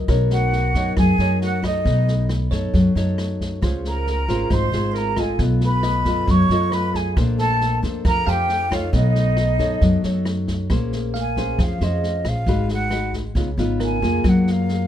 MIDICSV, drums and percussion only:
0, 0, Header, 1, 2, 480
1, 0, Start_track
1, 0, Tempo, 442478
1, 90, Time_signature, 4, 2, 24, 8
1, 16134, End_track
2, 0, Start_track
2, 0, Title_t, "Drums"
2, 90, Note_on_c, 9, 36, 55
2, 92, Note_on_c, 9, 37, 59
2, 92, Note_on_c, 9, 38, 22
2, 199, Note_off_c, 9, 36, 0
2, 200, Note_off_c, 9, 37, 0
2, 200, Note_off_c, 9, 38, 0
2, 329, Note_on_c, 9, 38, 25
2, 437, Note_off_c, 9, 38, 0
2, 571, Note_on_c, 9, 38, 21
2, 680, Note_off_c, 9, 38, 0
2, 808, Note_on_c, 9, 38, 22
2, 809, Note_on_c, 9, 36, 23
2, 917, Note_off_c, 9, 38, 0
2, 918, Note_off_c, 9, 36, 0
2, 1049, Note_on_c, 9, 37, 60
2, 1049, Note_on_c, 9, 38, 22
2, 1051, Note_on_c, 9, 36, 57
2, 1157, Note_off_c, 9, 37, 0
2, 1157, Note_off_c, 9, 38, 0
2, 1160, Note_off_c, 9, 36, 0
2, 1291, Note_on_c, 9, 38, 22
2, 1400, Note_off_c, 9, 38, 0
2, 1535, Note_on_c, 9, 38, 21
2, 1643, Note_off_c, 9, 38, 0
2, 1771, Note_on_c, 9, 36, 25
2, 1775, Note_on_c, 9, 37, 62
2, 1775, Note_on_c, 9, 38, 24
2, 1880, Note_off_c, 9, 36, 0
2, 1884, Note_off_c, 9, 37, 0
2, 1884, Note_off_c, 9, 38, 0
2, 2012, Note_on_c, 9, 36, 58
2, 2015, Note_on_c, 9, 38, 23
2, 2121, Note_off_c, 9, 36, 0
2, 2124, Note_off_c, 9, 38, 0
2, 2255, Note_on_c, 9, 38, 22
2, 2363, Note_off_c, 9, 38, 0
2, 2488, Note_on_c, 9, 37, 51
2, 2488, Note_on_c, 9, 38, 22
2, 2597, Note_off_c, 9, 37, 0
2, 2597, Note_off_c, 9, 38, 0
2, 2730, Note_on_c, 9, 36, 22
2, 2730, Note_on_c, 9, 38, 23
2, 2838, Note_off_c, 9, 36, 0
2, 2839, Note_off_c, 9, 38, 0
2, 2970, Note_on_c, 9, 36, 53
2, 2972, Note_on_c, 9, 38, 21
2, 3078, Note_off_c, 9, 36, 0
2, 3081, Note_off_c, 9, 38, 0
2, 3211, Note_on_c, 9, 38, 22
2, 3320, Note_off_c, 9, 38, 0
2, 3452, Note_on_c, 9, 37, 50
2, 3452, Note_on_c, 9, 38, 22
2, 3560, Note_off_c, 9, 37, 0
2, 3560, Note_off_c, 9, 38, 0
2, 3691, Note_on_c, 9, 36, 24
2, 3699, Note_on_c, 9, 38, 25
2, 3800, Note_off_c, 9, 36, 0
2, 3808, Note_off_c, 9, 38, 0
2, 3932, Note_on_c, 9, 36, 53
2, 3933, Note_on_c, 9, 37, 54
2, 3933, Note_on_c, 9, 38, 24
2, 4040, Note_off_c, 9, 36, 0
2, 4041, Note_off_c, 9, 37, 0
2, 4041, Note_off_c, 9, 38, 0
2, 4174, Note_on_c, 9, 38, 22
2, 4282, Note_off_c, 9, 38, 0
2, 4413, Note_on_c, 9, 38, 21
2, 4522, Note_off_c, 9, 38, 0
2, 4649, Note_on_c, 9, 36, 22
2, 4650, Note_on_c, 9, 38, 23
2, 4758, Note_off_c, 9, 36, 0
2, 4758, Note_off_c, 9, 38, 0
2, 4886, Note_on_c, 9, 37, 54
2, 4886, Note_on_c, 9, 38, 22
2, 4887, Note_on_c, 9, 36, 59
2, 4995, Note_off_c, 9, 37, 0
2, 4995, Note_off_c, 9, 38, 0
2, 4996, Note_off_c, 9, 36, 0
2, 5125, Note_on_c, 9, 38, 22
2, 5234, Note_off_c, 9, 38, 0
2, 5366, Note_on_c, 9, 38, 21
2, 5474, Note_off_c, 9, 38, 0
2, 5603, Note_on_c, 9, 37, 61
2, 5603, Note_on_c, 9, 38, 25
2, 5606, Note_on_c, 9, 36, 25
2, 5711, Note_off_c, 9, 37, 0
2, 5711, Note_off_c, 9, 38, 0
2, 5715, Note_off_c, 9, 36, 0
2, 5842, Note_on_c, 9, 38, 25
2, 5846, Note_on_c, 9, 36, 52
2, 5951, Note_off_c, 9, 38, 0
2, 5954, Note_off_c, 9, 36, 0
2, 6083, Note_on_c, 9, 38, 23
2, 6192, Note_off_c, 9, 38, 0
2, 6323, Note_on_c, 9, 37, 53
2, 6323, Note_on_c, 9, 38, 23
2, 6432, Note_off_c, 9, 37, 0
2, 6432, Note_off_c, 9, 38, 0
2, 6561, Note_on_c, 9, 38, 22
2, 6566, Note_on_c, 9, 36, 23
2, 6669, Note_off_c, 9, 38, 0
2, 6675, Note_off_c, 9, 36, 0
2, 6807, Note_on_c, 9, 38, 23
2, 6808, Note_on_c, 9, 36, 61
2, 6915, Note_off_c, 9, 38, 0
2, 6917, Note_off_c, 9, 36, 0
2, 7049, Note_on_c, 9, 38, 21
2, 7158, Note_off_c, 9, 38, 0
2, 7289, Note_on_c, 9, 37, 56
2, 7289, Note_on_c, 9, 38, 22
2, 7398, Note_off_c, 9, 37, 0
2, 7398, Note_off_c, 9, 38, 0
2, 7531, Note_on_c, 9, 36, 22
2, 7536, Note_on_c, 9, 38, 26
2, 7639, Note_off_c, 9, 36, 0
2, 7644, Note_off_c, 9, 38, 0
2, 7772, Note_on_c, 9, 36, 55
2, 7776, Note_on_c, 9, 37, 58
2, 7776, Note_on_c, 9, 38, 23
2, 7881, Note_off_c, 9, 36, 0
2, 7884, Note_off_c, 9, 37, 0
2, 7884, Note_off_c, 9, 38, 0
2, 8012, Note_on_c, 9, 38, 24
2, 8120, Note_off_c, 9, 38, 0
2, 8255, Note_on_c, 9, 38, 21
2, 8363, Note_off_c, 9, 38, 0
2, 8491, Note_on_c, 9, 36, 24
2, 8496, Note_on_c, 9, 38, 22
2, 8599, Note_off_c, 9, 36, 0
2, 8605, Note_off_c, 9, 38, 0
2, 8731, Note_on_c, 9, 36, 63
2, 8731, Note_on_c, 9, 37, 63
2, 8731, Note_on_c, 9, 38, 25
2, 8839, Note_off_c, 9, 36, 0
2, 8840, Note_off_c, 9, 37, 0
2, 8840, Note_off_c, 9, 38, 0
2, 8979, Note_on_c, 9, 38, 22
2, 9088, Note_off_c, 9, 38, 0
2, 9210, Note_on_c, 9, 38, 22
2, 9319, Note_off_c, 9, 38, 0
2, 9450, Note_on_c, 9, 36, 24
2, 9457, Note_on_c, 9, 37, 65
2, 9457, Note_on_c, 9, 38, 25
2, 9559, Note_off_c, 9, 36, 0
2, 9565, Note_off_c, 9, 37, 0
2, 9565, Note_off_c, 9, 38, 0
2, 9683, Note_on_c, 9, 38, 24
2, 9688, Note_on_c, 9, 36, 59
2, 9792, Note_off_c, 9, 38, 0
2, 9797, Note_off_c, 9, 36, 0
2, 9927, Note_on_c, 9, 38, 21
2, 10036, Note_off_c, 9, 38, 0
2, 10162, Note_on_c, 9, 37, 55
2, 10162, Note_on_c, 9, 38, 22
2, 10270, Note_off_c, 9, 37, 0
2, 10270, Note_off_c, 9, 38, 0
2, 10406, Note_on_c, 9, 38, 22
2, 10409, Note_on_c, 9, 36, 21
2, 10515, Note_off_c, 9, 38, 0
2, 10517, Note_off_c, 9, 36, 0
2, 10645, Note_on_c, 9, 38, 21
2, 10649, Note_on_c, 9, 36, 58
2, 10754, Note_off_c, 9, 38, 0
2, 10757, Note_off_c, 9, 36, 0
2, 10885, Note_on_c, 9, 38, 23
2, 10994, Note_off_c, 9, 38, 0
2, 11124, Note_on_c, 9, 37, 56
2, 11124, Note_on_c, 9, 38, 22
2, 11232, Note_off_c, 9, 37, 0
2, 11232, Note_off_c, 9, 38, 0
2, 11365, Note_on_c, 9, 38, 26
2, 11367, Note_on_c, 9, 36, 24
2, 11473, Note_off_c, 9, 38, 0
2, 11475, Note_off_c, 9, 36, 0
2, 11605, Note_on_c, 9, 37, 60
2, 11605, Note_on_c, 9, 38, 24
2, 11608, Note_on_c, 9, 36, 57
2, 11714, Note_off_c, 9, 37, 0
2, 11714, Note_off_c, 9, 38, 0
2, 11717, Note_off_c, 9, 36, 0
2, 11850, Note_on_c, 9, 38, 22
2, 11958, Note_off_c, 9, 38, 0
2, 12091, Note_on_c, 9, 38, 21
2, 12200, Note_off_c, 9, 38, 0
2, 12329, Note_on_c, 9, 36, 22
2, 12330, Note_on_c, 9, 38, 23
2, 12437, Note_off_c, 9, 36, 0
2, 12439, Note_off_c, 9, 38, 0
2, 12568, Note_on_c, 9, 36, 55
2, 12572, Note_on_c, 9, 37, 52
2, 12572, Note_on_c, 9, 38, 22
2, 12677, Note_off_c, 9, 36, 0
2, 12680, Note_off_c, 9, 37, 0
2, 12680, Note_off_c, 9, 38, 0
2, 12808, Note_on_c, 9, 38, 23
2, 12917, Note_off_c, 9, 38, 0
2, 13055, Note_on_c, 9, 38, 21
2, 13163, Note_off_c, 9, 38, 0
2, 13286, Note_on_c, 9, 37, 57
2, 13286, Note_on_c, 9, 38, 23
2, 13287, Note_on_c, 9, 36, 24
2, 13395, Note_off_c, 9, 36, 0
2, 13395, Note_off_c, 9, 37, 0
2, 13395, Note_off_c, 9, 38, 0
2, 13522, Note_on_c, 9, 38, 22
2, 13525, Note_on_c, 9, 36, 55
2, 13631, Note_off_c, 9, 38, 0
2, 13634, Note_off_c, 9, 36, 0
2, 13764, Note_on_c, 9, 38, 22
2, 13872, Note_off_c, 9, 38, 0
2, 14000, Note_on_c, 9, 37, 53
2, 14000, Note_on_c, 9, 38, 21
2, 14108, Note_off_c, 9, 37, 0
2, 14108, Note_off_c, 9, 38, 0
2, 14245, Note_on_c, 9, 36, 23
2, 14247, Note_on_c, 9, 38, 21
2, 14354, Note_off_c, 9, 36, 0
2, 14355, Note_off_c, 9, 38, 0
2, 14485, Note_on_c, 9, 36, 59
2, 14485, Note_on_c, 9, 38, 23
2, 14594, Note_off_c, 9, 36, 0
2, 14594, Note_off_c, 9, 38, 0
2, 14730, Note_on_c, 9, 38, 20
2, 14839, Note_off_c, 9, 38, 0
2, 14970, Note_on_c, 9, 37, 49
2, 14970, Note_on_c, 9, 38, 21
2, 15079, Note_off_c, 9, 37, 0
2, 15079, Note_off_c, 9, 38, 0
2, 15212, Note_on_c, 9, 36, 25
2, 15221, Note_on_c, 9, 38, 22
2, 15321, Note_off_c, 9, 36, 0
2, 15329, Note_off_c, 9, 38, 0
2, 15451, Note_on_c, 9, 37, 54
2, 15451, Note_on_c, 9, 38, 22
2, 15452, Note_on_c, 9, 36, 57
2, 15559, Note_off_c, 9, 37, 0
2, 15559, Note_off_c, 9, 38, 0
2, 15560, Note_off_c, 9, 36, 0
2, 15699, Note_on_c, 9, 38, 23
2, 15807, Note_off_c, 9, 38, 0
2, 15933, Note_on_c, 9, 38, 23
2, 16041, Note_off_c, 9, 38, 0
2, 16134, End_track
0, 0, End_of_file